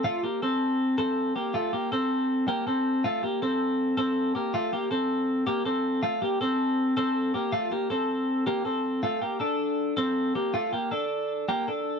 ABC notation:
X:1
M:4/4
L:1/8
Q:1/4=160
K:F
V:1 name="Clean electric guitar"
[A,F] [B,G] [CA]3 [CA]2 [B,G] | [A,F] [B,G] [CA]3 [B,G] [CA]2 | [A,F] [B,G] [CA]3 [CA]2 [B,G] | [A,F] [B,G] [CA]3 [B,G] [CA]2 |
[A,F] [B,G] [CA]3 [CA]2 [B,G] | [A,F] [B,G] [CA]3 [B,G] [CA]2 | [A,F] [B,G] [DA]3 [CA]2 [B,G] | [A,F] [B,G] [DA]3 [B,G] [DA]2 |]